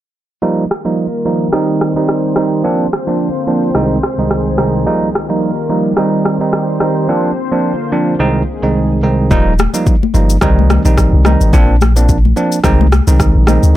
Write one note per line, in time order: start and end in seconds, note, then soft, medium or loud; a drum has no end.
0.42 1.52 D#3 medium
0.42 0.64 F3 medium
0.42 0.64 G3 medium
0.42 2.62 G3 medium
0.42 1.52 A#3 medium
0.42 0.64 A#3 medium
0.42 0.64 D#4 loud
0.42 1.52 F4 medium
0.42 1.52 A#4 medium
0.42 shaker medium
0.70 cross-stick medium
0.70 shaker medium
0.85 1.05 F3 medium
0.85 1.05 G3 medium
0.85 1.06 A#3 medium
0.85 1.06 D#4 medium
0.85 shaker medium
0.98 shaker medium
1.25 1.47 F3 medium
1.25 1.47 G3 medium
1.25 1.47 A#3 medium
1.25 1.47 D#4 medium
1.25 shaker medium
1.41 shaker medium
1.53 1.93 D#3 medium
1.53 2.63 D#3 medium
1.53 1.93 G3 medium
1.53 2.63 C4 medium
1.53 1.93 C4 medium
1.53 1.93 D#4 medium
1.53 2.63 G4 medium
1.53 2.63 C5 medium
1.53 cross-stick medium
1.53 shaker medium
1.81 cross-stick medium
1.81 shaker soft
1.96 2.34 D#3 medium
1.96 2.34 G3 medium
1.96 2.34 C4 medium
1.96 2.34 D#4 medium
1.96 shaker medium
2.09 cross-stick medium
2.09 shaker medium
2.36 2.62 D#3 medium
2.36 2.62 G3 medium
2.36 2.62 C4 medium
2.36 2.63 D#4 medium
2.36 cross-stick medium
2.36 shaker medium
2.52 shaker medium
2.64 3.74 D3 medium
2.64 2.86 F3 medium
2.64 2.86 A#3 medium
2.64 3.74 A#3 medium
2.64 4.84 C4 medium
2.64 2.86 C4 medium
2.64 2.86 D4 loud
2.64 3.74 F4 medium
2.64 4.84 C5 medium
2.64 shaker medium
2.92 cross-stick medium
2.92 shaker medium
3.07 3.27 F3 medium
3.07 3.27 A#3 medium
3.07 3.28 C4 medium
3.07 3.28 D4 medium
3.07 shaker medium
3.20 shaker medium
3.47 3.69 F3 medium
3.47 3.69 A#3 medium
3.47 3.69 C4 medium
3.47 3.69 D4 medium
3.47 shaker medium
3.63 shaker medium
3.75 3.97 C2 medium
3.75 4.85 C2 medium
3.75 3.97 D#3 medium
3.75 7.05 D#3 medium
3.75 4.85 G#3 medium
3.75 3.97 G#3 medium
3.75 3.97 C4 medium
3.75 3.97 D#4 medium
3.75 4.85 G#4 medium
3.75 cross-stick medium
3.75 shaker medium
4.03 cross-stick medium
4.03 shaker soft
4.18 4.56 C2 medium
4.18 4.56 D#3 medium
4.18 4.56 G#3 medium
4.18 4.56 C4 medium
4.18 4.56 D#4 medium
4.18 shaker medium
4.31 cross-stick medium
4.31 shaker medium
4.58 4.84 C2 medium
4.58 4.84 D#3 medium
4.58 4.85 G#3 medium
4.58 4.85 C4 medium
4.58 4.85 D#4 medium
4.58 cross-stick medium
4.58 shaker medium
4.74 shaker medium
4.86 5.08 F3 medium
4.86 5.08 G3 medium
4.86 7.07 G3 medium
4.86 5.08 A#3 medium
4.86 5.97 A#3 medium
4.86 5.08 D#4 loud
4.86 5.97 F4 medium
4.86 5.97 A#4 medium
4.86 shaker medium
5.14 cross-stick medium
5.14 shaker medium
5.29 5.50 F3 medium
5.29 5.50 G3 medium
5.29 5.50 A#3 medium
5.29 5.50 D#4 medium
5.29 shaker medium
5.42 shaker medium
5.70 5.91 F3 medium
5.70 5.91 G3 medium
5.70 5.92 A#3 medium
5.70 5.92 D#4 medium
5.70 shaker medium
5.85 shaker medium
5.97 6.37 D#3 medium
5.97 6.37 G3 medium
5.97 9.28 C4 medium
5.97 6.37 C4 medium
5.97 6.37 D#4 loud
5.97 7.08 G4 medium
5.97 9.28 C5 medium
5.97 cross-stick medium
5.97 shaker medium
6.25 cross-stick medium
6.25 shaker soft
6.40 6.78 D#3 medium
6.40 6.78 G3 medium
6.40 6.78 C4 medium
6.40 6.78 D#4 medium
6.40 shaker medium
6.53 cross-stick medium
6.53 shaker medium
6.80 7.07 D#3 medium
6.80 7.07 G3 medium
6.80 7.07 C4 medium
6.80 7.07 D#4 medium
6.80 cross-stick medium
6.80 shaker medium
6.96 shaker medium
7.09 8.19 D3 medium
7.09 7.30 F3 medium
7.09 7.30 A#3 medium
7.09 8.19 A#3 medium
7.09 7.30 C4 medium
7.09 7.31 D4 loud
7.09 8.19 F4 medium
7.52 7.72 F3 medium
7.52 7.72 A#3 medium
7.52 7.72 C4 medium
7.52 7.72 D4 medium
7.92 8.14 F3 medium
7.92 8.14 A#3 medium
7.92 8.14 C4 medium
7.92 8.14 D4 medium
8.20 8.41 C2 medium
8.20 9.30 C2 medium
8.20 8.41 D#3 medium
8.20 9.30 D#3 medium
8.20 9.30 G#3 medium
8.20 8.42 G#3 medium
8.20 8.42 C4 medium
8.20 8.42 D#4 medium
8.20 9.30 G#4 medium
8.63 9.00 C2 medium
8.63 9.00 D#3 medium
8.63 9.00 G#3 medium
8.63 9.00 C4 medium
8.63 9.00 D#4 medium
9.03 9.29 C2 medium
9.03 9.29 D#3 medium
9.03 9.29 G#3 medium
9.03 9.29 C4 medium
9.03 9.29 D#4 medium
9.31 9.67 D#1 loud
9.31 9.52 F3 medium
9.31 9.52 G3 medium
9.31 9.53 A#3 medium
9.31 9.53 D#4 loud
9.31 kick loud
9.31 low conga medium
9.31 shaker medium
9.59 cross-stick medium
9.59 high conga medium
9.59 shaker medium
9.74 9.94 F3 medium
9.74 9.94 G3 medium
9.74 9.94 A#3 medium
9.74 9.94 D#4 medium
9.74 shaker medium
9.87 kick loud
9.87 shaker medium
10.03 high conga medium
10.14 10.38 G1 loud
10.14 10.36 F3 medium
10.14 10.36 G3 medium
10.14 10.36 A#3 medium
10.14 10.36 D#4 medium
10.14 shaker medium
10.30 shaker medium
10.41 10.78 C2 loud
10.41 10.81 D#3 medium
10.41 10.81 G3 medium
10.41 10.82 C4 medium
10.41 10.82 D#4 loud
10.41 kick loud
10.41 cross-stick medium
10.41 low conga medium
10.41 shaker medium
10.59 high conga medium
10.70 cross-stick medium
10.70 high conga medium
10.70 shaker soft
10.85 11.09 A#1 medium
10.85 11.22 D#3 medium
10.85 11.22 G3 medium
10.85 11.23 C4 medium
10.85 11.23 D#4 medium
10.85 shaker medium
10.98 kick loud
10.98 cross-stick medium
10.98 shaker medium
11.13 11.36 C2 medium
11.25 11.51 D#3 medium
11.25 11.51 G3 medium
11.25 11.51 C4 medium
11.25 11.51 D#4 medium
11.25 cross-stick medium
11.25 high conga medium
11.25 shaker medium
11.41 11.51 G#1 medium
11.41 shaker medium
11.53 12.33 A#1 loud
11.53 11.75 F3 medium
11.53 11.75 A#3 medium
11.53 11.75 C4 medium
11.53 11.75 D4 loud
11.53 kick loud
11.53 low conga medium
11.53 shaker medium
11.81 cross-stick medium
11.81 high conga medium
11.81 shaker medium
11.96 12.16 F3 medium
11.96 12.17 A#3 medium
11.96 12.17 C4 medium
11.96 12.17 D4 medium
11.96 shaker medium
12.09 kick loud
12.09 shaker medium
12.25 high conga medium
12.36 12.58 F3 medium
12.36 12.58 A#3 medium
12.36 12.58 C4 medium
12.36 12.58 D4 medium
12.36 shaker medium
12.52 shaker medium
12.64 13.01 C2 loud
12.64 12.86 D#3 medium
12.64 12.86 G#3 medium
12.64 12.86 C4 medium
12.64 12.86 D#4 loud
12.64 kick loud
12.64 cross-stick medium
12.64 low conga medium
12.64 shaker medium
12.81 high conga medium
12.92 cross-stick medium
12.92 high conga medium
12.92 shaker soft
13.07 13.31 C2 medium
13.07 13.45 D#3 medium
13.07 13.45 G#3 medium
13.07 13.45 C4 medium
13.07 13.45 D#4 medium
13.07 shaker medium
13.20 kick medium
13.20 cross-stick medium
13.20 shaker medium
13.35 13.59 A#1 medium
13.47 13.73 D#3 medium
13.47 13.73 G#3 medium
13.47 13.74 C4 medium
13.47 13.74 D#4 medium
13.47 cross-stick medium
13.47 high conga medium
13.47 shaker medium
13.63 13.74 D2 medium
13.63 shaker medium